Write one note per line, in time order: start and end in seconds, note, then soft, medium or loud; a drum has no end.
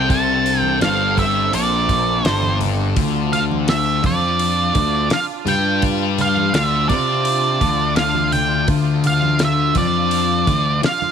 0.00 0.78 C2 medium
0.00 0.80 C3 loud
0.00 2.94 C4 medium
0.00 11.12 D4 medium
0.00 2.94 A4 medium
0.00 0.10 G5 medium
0.09 0.61 A5 loud
0.09 kick loud
0.09 open hi-hat medium
0.09 low conga medium
0.46 open hi-hat soft
0.61 0.78 G5 loud
0.61 high conga medium
0.81 1.49 G1 medium
0.81 1.52 G2 medium
0.81 1.15 F5 medium
0.81 snare loud
0.81 open hi-hat medium
1.17 1.54 E5 medium
1.17 kick medium
1.17 open hi-hat medium
1.17 high conga medium
1.17 low conga medium
1.52 2.21 A#1 medium
1.52 2.23 A#2 medium
1.52 2.26 D5 medium
1.52 open hi-hat medium
1.89 kick medium
1.89 open hi-hat medium
1.89 high conga medium
2.24 2.92 G1 loud
2.24 2.95 G2 loud
2.24 2.57 C5 medium
2.24 snare loud
2.24 open hi-hat medium
2.43 high conga medium
2.60 open hi-hat soft
2.60 low conga medium
2.96 4.00 D2 medium
2.96 4.02 D3 loud
2.96 11.12 F4 medium
2.96 kick loud
2.96 open hi-hat medium
2.96 low conga medium
3.33 3.42 F5 medium
3.33 open hi-hat medium
3.33 low conga medium
3.51 high conga medium
3.68 4.02 E5 medium
3.68 snare loud
3.68 open hi-hat medium
4.04 4.71 F2 medium
4.04 4.75 F3 loud
4.04 5.13 D5 medium
4.04 kick medium
4.04 open hi-hat medium
4.04 high conga medium
4.04 low conga medium
4.39 open hi-hat medium
4.75 5.09 D2 medium
4.75 5.10 D3 loud
4.75 kick medium
4.75 open hi-hat medium
4.75 high conga medium
5.10 5.23 F5 medium
5.10 muted picked electric bass stroke soft
5.10 muted distorted electric guitar stroke medium
5.10 snare loud
5.10 open hi-hat medium
5.46 6.50 G2 medium
5.46 6.53 G3 medium
5.46 5.81 G5 medium
5.46 open hi-hat soft
5.46 low conga medium
5.82 kick loud
5.82 open hi-hat medium
5.82 low conga medium
6.18 6.55 F5 medium
6.18 open hi-hat soft
6.18 low conga medium
6.37 high conga medium
6.53 6.87 D2 medium
6.53 6.89 D3 medium
6.53 6.88 E5 medium
6.53 snare loud
6.53 open hi-hat medium
6.89 7.57 C3 medium
6.89 7.60 C4 loud
6.89 7.96 D5 medium
6.89 kick medium
6.89 open hi-hat medium
6.89 high conga medium
6.89 low conga medium
7.25 open hi-hat medium
7.61 8.65 D2 loud
7.61 8.67 D3 loud
7.61 kick medium
7.61 open hi-hat medium
7.61 high conga medium
7.96 8.30 F5 loud
7.96 snare loud
7.96 open hi-hat medium
8.15 high conga medium
8.32 8.66 G5 medium
8.32 open hi-hat medium
8.32 low conga medium
8.68 9.72 D2 medium
8.68 9.75 D3 loud
8.68 kick loud
8.68 open hi-hat medium
8.68 low conga medium
9.03 9.39 F5 medium
9.03 open hi-hat medium
9.03 low conga medium
9.22 high conga medium
9.39 snare loud
9.39 open hi-hat medium
9.45 9.77 E5 medium
9.75 10.44 F2 medium
9.75 10.47 F3 loud
9.75 10.80 D5 medium
9.75 kick medium
9.75 open hi-hat medium
9.75 high conga medium
9.75 low conga medium
10.11 open hi-hat medium
10.47 10.81 D2 loud
10.47 10.82 D3 loud
10.47 kick medium
10.47 open hi-hat medium
10.47 high conga medium
10.83 11.12 F5 medium
10.83 muted distorted electric guitar stroke medium
10.83 muted picked electric bass stroke soft
10.83 snare loud
10.83 open hi-hat medium
11.02 high conga medium